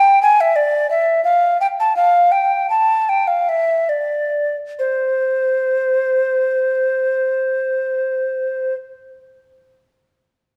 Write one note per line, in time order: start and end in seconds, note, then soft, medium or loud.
0.00 0.22 G5 medium
0.23 0.42 G#5 medium
0.41 0.57 E5 medium
0.56 0.90 D5 medium
0.90 1.24 E5 medium
1.24 1.60 F5 medium
1.61 1.67 G5 medium
1.80 1.96 A5 medium
1.96 2.33 F5 medium
2.32 2.69 G5 medium
2.70 3.11 A5 medium
3.09 3.29 G5 medium
3.28 3.50 F5 medium
3.49 3.91 E5 medium
3.89 4.57 D5 medium
4.79 8.74 C5 medium